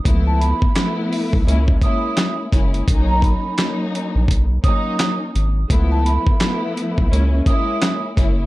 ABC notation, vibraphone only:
X:1
M:4/4
L:1/16
Q:"Swing 16ths" 1/4=85
K:B
V:1 name="Vibraphone"
z =a b3 z4 z d'3 z3 | z a b3 z4 z d'3 z3 | z =a b3 z4 z d'3 z3 |]